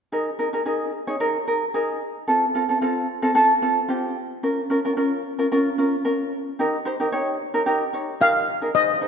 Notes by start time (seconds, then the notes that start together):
0.12 D#4 G#4 A#4
0.39 D#4 G#4 A#4
0.53 D#4 G#4 A#4
0.66 D#4 G#4 A#4
1.07 D#4 G#4 C#5
1.20 D#4 G#4 A#4
1.48 D#4 G#4 A#4
1.74 D#4 G#4 A#4
2.28 C4 F4 A4
2.55 C4 F4 A4
2.69 C4 F4 A4
2.81 C4 F4 A4
3.22 C4 F4 A4
3.35 C4 F4 A4
3.62 C4 F4 A4
3.88 C4 F4 G4
4.43 C#4 F4 A#4
4.70 C#4 F4 A#4
4.85 C#4 F4 A#4
4.97 C#4 F4 A#4
5.39 C#4 F4 A#4
5.52 C#4 F4 A#4
5.78 C#4 F4 A#4
6.05 C#4 F4 A#4
6.59 D#4 G4 A#4
6.85 D#4 G4 C5
7.00 D#4 G4 A#4
7.12 D#4 G4 C#5
7.54 D#4 G4 A#4
7.66 D#4 G4 A#4
7.93 D#4 G4 C#5
8.20 D#4 G4 A#4 F5
8.61 D#4 G#4 A#4
8.75 D#4 G#4 C5 D#5
9.01 D#4 G#4 C5